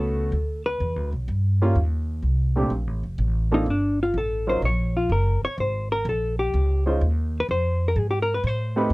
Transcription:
0.00 0.31 C#2 medium
0.00 0.29 A3 medium
0.00 0.29 B3 medium
0.00 0.29 C#4 medium
0.00 0.30 F#4 medium
0.00 0.62 A4 medium
0.32 0.78 D2 medium
0.66 1.10 B4 medium
0.80 0.96 E2 medium
0.96 1.12 D2 medium
1.12 1.27 B1 medium
1.28 1.74 G2 medium
1.62 1.75 G3 medium
1.62 1.75 A#3 medium
1.62 1.75 C#4 medium
1.62 1.75 F4 medium
1.75 2.22 D#2 medium
2.22 2.69 C2 medium
2.56 2.70 A#2 medium
2.56 2.70 A3 medium
2.56 2.70 C4 medium
2.56 2.70 D4 medium
2.56 2.70 G4 medium
2.70 2.87 A#1 medium
2.87 3.03 A1 medium
3.03 3.18 F1 medium
3.18 3.65 A1 medium
3.52 3.65 A#3 medium
3.52 3.66 C4 medium
3.52 3.66 D4 medium
3.52 3.68 D#4 medium
3.52 3.66 F4 medium
3.52 3.66 A4 medium
3.66 4.13 G1 medium
3.70 4.00 D4 medium
4.03 4.16 F4 medium
4.14 4.61 A1 medium
4.14 4.48 A4 medium
4.47 4.61 F#3 medium
4.47 4.61 C#4 medium
4.47 4.61 D#4 medium
4.47 4.61 F4 medium
4.47 4.61 A#4 medium
4.47 4.63 C5 medium
4.62 5.09 A#1 medium
4.62 4.96 C#5 medium
4.97 5.11 F4 medium
5.09 5.40 F#1 medium
5.09 5.43 A#4 medium
5.43 5.58 C#5 loud
5.43 muted upright bass stroke soft
5.58 6.04 G#1 medium
5.58 5.91 C5 medium
5.92 6.06 A#4 medium
6.05 6.52 A#1 medium
6.05 6.39 A4 medium
6.39 6.83 G4 medium
6.54 7.00 C#2 medium
6.86 6.99 G#3 medium
6.86 7.00 C#4 medium
6.86 7.00 D#4 medium
6.86 7.00 F4 medium
6.86 7.00 C5 medium
7.01 7.47 D#2 medium
7.40 7.48 B4 medium
7.49 7.95 F2 medium
7.49 7.87 C5 medium
7.88 7.99 A#4 medium
7.96 8.42 G#2 medium
7.96 8.10 G#4 medium
8.11 8.22 G4 medium
8.22 8.33 A#4 medium
8.34 8.43 B4 medium
8.44 8.89 A2 medium
8.44 8.94 C5 medium
8.76 8.90 A3 medium
8.76 8.90 C4 medium
8.76 8.90 D#4 medium
8.76 8.90 G4 medium
8.76 8.91 B4 medium
8.90 8.94 F2 medium

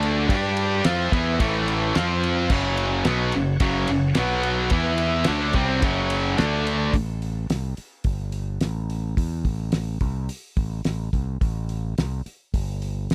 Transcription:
0.00 0.26 D2 medium
0.00 0.27 D3 medium
0.00 0.27 A3 medium
0.00 0.27 D4 medium
0.00 0.29 A4 medium
0.00 0.27 D5 medium
0.00 0.28 A5 medium
0.00 ride medium
0.27 0.81 G2 medium
0.27 0.83 G3 medium
0.27 0.83 D4 medium
0.27 0.83 G4 medium
0.27 0.83 G4 loud
0.27 0.83 D5 medium
0.27 0.83 G5 medium
0.27 kick loud
0.27 ride loud
0.57 ride medium
0.84 1.11 F2 medium
0.84 1.11 F3 medium
0.84 1.12 C4 loud
0.84 1.94 E4 medium
0.84 1.11 F4 loud
0.84 1.94 A4 medium
0.84 1.94 C5 medium
0.84 1.94 E5 medium
0.84 snare loud
0.84 ride loud
1.12 1.38 E2 medium
1.12 1.39 E3 medium
1.12 1.39 B3 loud
1.12 1.39 E4 medium
1.12 kick loud
1.12 ride medium
1.39 1.92 A1 medium
1.39 1.94 A2 loud
1.39 1.95 E3 medium
1.39 1.94 A3 loud
1.39 kick loud
1.39 ride loud
1.68 ride medium
1.95 2.47 F2 medium
1.95 2.49 F3 medium
1.95 2.50 C4 loud
1.95 2.50 C4 medium
1.95 2.50 F4 medium
1.95 2.51 F4 medium
1.95 2.50 C5 medium
1.95 2.51 F5 medium
1.95 snare loud
1.95 ride medium
2.23 ride medium
2.50 3.02 F#1 medium
2.50 3.05 F#2 medium
2.50 3.05 C#3 medium
2.50 3.05 F#3 medium
2.50 4.16 C#4 medium
2.50 4.15 F#4 medium
2.50 4.15 C#5 medium
2.50 4.15 F#5 medium
2.50 kick loud
2.50 crash loud
2.77 ride medium
3.05 3.32 B1 medium
3.05 3.33 B2 medium
3.05 3.33 F#3 medium
3.05 3.33 B3 loud
3.05 snare loud
3.05 ride medium
3.32 3.60 F#1 medium
3.32 3.56 F#2 medium
3.32 3.57 C#3 medium
3.32 ride medium
3.60 3.87 F#1 medium
3.60 3.88 F#2 medium
3.60 3.88 C#3 loud
3.60 3.88 F#3 loud
3.60 kick loud
3.60 ride loud
3.88 4.15 F#1 medium
3.88 4.12 F#2 medium
3.88 4.12 C#3 medium
3.88 ride medium
4.15 4.68 B1 medium
4.15 4.71 B2 medium
4.15 4.71 F#3 medium
4.15 4.71 B3 medium
4.15 4.72 B3 medium
4.15 4.72 F#4 medium
4.15 4.72 B4 medium
4.15 4.72 F#5 medium
4.15 snare loud
4.15 ride loud
4.43 ride medium
4.70 5.23 E2 medium
4.70 5.26 E3 loud
4.70 5.27 B3 medium
4.70 5.27 E4 loud
4.70 5.27 E4 medium
4.70 5.28 B4 medium
4.70 5.27 E5 medium
4.70 kick loud
4.70 ride loud
4.98 ride medium
5.24 5.54 D3 medium
5.24 5.54 A3 loud
5.24 5.54 D4 medium
5.24 snare loud
5.24 ride loud
5.28 5.54 D2 loud
5.28 6.38 C#4 medium
5.28 6.38 F#4 medium
5.28 6.38 C#5 medium
5.28 6.39 F#5 medium
5.53 5.81 C2 medium
5.53 5.82 C3 medium
5.53 5.82 G3 medium
5.53 5.82 C4 loud
5.53 kick loud
5.53 ride medium
5.82 6.34 F#1 medium
5.82 6.37 F#2 medium
5.82 6.36 C#3 loud
5.82 6.37 F#3 loud
5.82 kick loud
5.82 ride loud
6.10 ride medium
6.37 6.91 D2 medium
6.37 6.92 D3 medium
6.37 6.93 A3 medium
6.37 6.93 D4 medium
6.37 6.94 D4 medium
6.37 6.94 A4 medium
6.37 6.94 D5 medium
6.37 6.94 A5 medium
6.37 snare loud
6.37 ride medium
6.67 ride medium
6.93 7.46 A1 medium
6.93 kick loud
6.93 open hi-hat medium
7.22 open hi-hat soft
7.50 7.76 C2 medium
7.50 snare medium
7.50 open hi-hat medium
7.77 muted fingered electric bass stroke soft
7.77 open hi-hat soft
8.04 8.57 G1 medium
8.04 kick loud
8.04 open hi-hat medium
8.32 open hi-hat soft
8.61 9.14 A1 medium
8.61 snare medium
8.61 open hi-hat medium
8.90 open hi-hat soft
9.17 9.43 E2 medium
9.17 kick loud
9.17 open hi-hat medium
9.45 9.98 A1 medium
9.45 kick loud
9.45 open hi-hat soft
9.72 snare loud
9.72 open hi-hat medium
10.01 10.28 C2 medium
10.01 kick loud
10.01 open hi-hat soft
10.29 open hi-hat medium
10.57 10.84 A1 medium
10.57 kick loud
10.57 open hi-hat soft
10.85 11.12 A1 medium
10.85 snare medium
10.85 open hi-hat medium
11.13 11.40 C2 medium
11.13 kick medium
11.13 open hi-hat soft
11.41 11.94 A1 medium
11.41 kick loud
11.41 open hi-hat medium
11.69 open hi-hat soft
11.98 12.24 C2 medium
11.98 snare loud
11.98 open hi-hat medium
12.26 muted fingered electric bass stroke soft
12.26 open hi-hat soft
12.54 13.07 G1 medium
12.54 kick medium
12.54 open hi-hat medium
12.82 open hi-hat soft
13.10 13.15 A1 medium
13.10 snare medium
13.10 open hi-hat medium

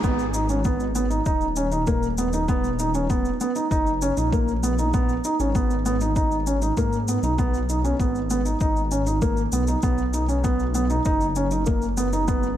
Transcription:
0.04 1.21 G#1 loud
0.04 0.22 B3 loud
0.04 kick loud
0.04 shaker soft
0.19 shaker soft
0.34 0.43 D#4 medium
0.34 shaker medium
0.49 0.59 C#4 medium
0.49 shaker soft
0.65 0.83 B3 medium
0.65 kick medium
0.65 shaker soft
0.80 shaker soft
0.95 1.04 B3 medium
0.95 shaker medium
1.10 1.20 D#4 medium
1.10 shaker soft
1.26 3.35 D#1 medium
1.26 1.44 D#4 medium
1.26 kick loud
1.26 shaker soft
1.41 shaker soft
1.56 1.66 C#4 medium
1.56 shaker medium
1.72 1.81 D#4 medium
1.72 shaker soft
1.87 2.05 A#3 medium
1.87 kick loud
1.87 shaker soft
2.03 shaker soft
2.18 2.27 B3 medium
2.18 shaker medium
2.33 2.42 D#4 medium
2.33 shaker soft
2.48 2.67 B3 loud
2.48 kick loud
2.48 shaker soft
2.64 shaker soft
2.79 2.89 D#4 medium
2.79 shaker medium
2.94 3.04 C#4 medium
2.94 shaker soft
3.10 3.28 B3 medium
3.10 kick loud
3.10 shaker soft
3.25 shaker soft
3.41 3.50 B3 medium
3.41 shaker medium
3.56 3.65 D#4 medium
3.56 shaker soft
3.71 4.12 F#1 loud
3.71 3.89 D#4 loud
3.71 kick loud
3.71 shaker soft
3.87 shaker soft
4.02 4.11 C#4 medium
4.02 shaker medium
4.17 5.19 A#1 medium
4.17 4.26 D#4 medium
4.17 shaker soft
4.33 4.51 A#3 medium
4.33 kick loud
4.33 shaker soft
4.48 shaker soft
4.63 4.72 B3 medium
4.63 shaker medium
4.79 4.88 D#4 medium
4.79 shaker soft
4.94 5.12 B3 medium
4.94 kick loud
4.94 shaker soft
5.09 shaker soft
5.24 5.34 D#4 medium
5.24 shaker medium
5.40 6.72 G#1 loud
5.40 5.49 C#4 medium
5.40 shaker soft
5.55 5.73 B3 medium
5.55 kick loud
5.55 shaker soft
5.71 shaker soft
5.86 5.95 B3 medium
5.86 shaker medium
6.01 6.10 D#4 medium
6.01 shaker soft
6.16 6.34 D#4 medium
6.16 kick loud
6.16 shaker soft
6.32 shaker soft
6.47 6.56 C#4 medium
6.47 shaker medium
6.62 6.71 D#4 medium
6.62 shaker soft
6.77 7.18 G#2 medium
6.77 6.96 A#3 medium
6.77 kick loud
6.77 shaker soft
6.93 shaker soft
7.08 7.17 B3 medium
7.08 shaker medium
7.23 7.94 B1 medium
7.23 7.32 D#4 medium
7.23 shaker soft
7.38 7.57 B3 medium
7.38 kick loud
7.38 shaker soft
7.54 shaker soft
7.69 7.78 D#4 medium
7.69 shaker medium
7.84 7.93 C#4 medium
7.84 shaker soft
8.00 8.55 G#1 medium
8.00 8.18 B3 medium
8.00 kick loud
8.00 shaker soft
8.15 shaker soft
8.30 8.40 B3 medium
8.30 shaker medium
8.46 8.55 D#4 medium
8.46 shaker soft
8.61 9.47 G#1 medium
8.61 8.79 D#4 medium
8.61 kick loud
8.61 shaker soft
8.76 shaker soft
8.91 9.01 C#4 medium
8.91 shaker medium
9.07 9.16 D#4 medium
9.07 shaker soft
9.22 9.40 A#3 medium
9.22 kick loud
9.22 shaker soft
9.37 shaker soft
9.52 9.76 B1 loud
9.52 9.62 B3 medium
9.52 shaker medium
9.67 9.77 D#4 medium
9.67 shaker soft
9.83 11.00 B1 loud
9.83 10.01 B3 medium
9.83 kick loud
9.83 shaker soft
9.98 shaker soft
10.13 10.23 D#4 medium
10.13 shaker medium
10.29 10.38 C#4 medium
10.29 shaker soft
10.44 10.62 B3 medium
10.44 kick medium
10.44 shaker soft
10.60 shaker soft
10.75 10.84 B3 medium
10.75 shaker medium
10.90 10.99 D#4 medium
10.90 shaker soft
11.05 12.57 F#1 loud
11.05 11.24 D#4 medium
11.05 kick loud
11.05 shaker soft
11.21 shaker soft
11.36 11.45 C#4 medium
11.36 shaker medium
11.51 11.61 D#4 medium
11.51 shaker soft
11.66 11.85 A#3 medium
11.66 kick loud
11.66 shaker soft
11.82 shaker soft
11.97 12.06 B3 medium
11.97 shaker medium
12.13 12.22 D#4 medium
12.13 shaker soft
12.28 12.46 B3 medium
12.28 kick loud
12.28 shaker soft
12.43 shaker soft

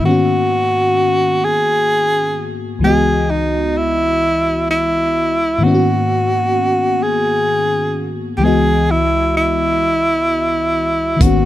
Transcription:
0.01 2.78 G#2 medium
0.01 2.79 D#3 medium
0.01 2.80 A#3 medium
0.05 2.81 B3 medium
0.05 2.82 C#4 medium
0.05 1.46 F#4 loud
0.11 2.83 F#4 medium
1.45 2.57 G#4 loud
2.79 5.56 C#2 medium
2.79 5.57 E3 medium
2.79 5.58 G#3 medium
2.84 5.59 B3 medium
2.84 3.32 G#4 loud
2.84 5.60 D#5 medium
2.89 5.61 F#4 medium
3.30 3.79 D#4 medium
3.77 4.70 E4 loud
4.71 5.65 E4 loud
5.58 8.36 G#2 medium
5.58 8.36 D#3 medium
5.58 8.37 A#3 medium
5.63 8.38 B3 medium
5.63 8.39 C#4 medium
5.63 7.04 F#4 medium
5.68 5.72 E4 medium
5.74 8.44 F#4 medium
7.03 8.15 G#4 medium
8.37 11.15 C#2 medium
8.37 11.16 E3 medium
8.37 8.45 G4 medium
8.41 11.17 G#3 medium
8.41 11.18 B3 medium
8.41 8.92 G#4 loud
8.46 11.20 F#4 medium
8.46 11.19 D#5 medium
8.91 9.36 E4 loud
9.37 11.23 E4 loud
11.17 11.45 D#3 medium
11.17 11.45 A#3 medium
11.21 11.45 G#1 loud
11.21 11.45 B3 medium
11.21 11.45 C#4 medium
11.21 11.45 F#4 medium
11.21 kick loud
11.21 closed hi-hat medium
11.26 11.45 F#4 medium

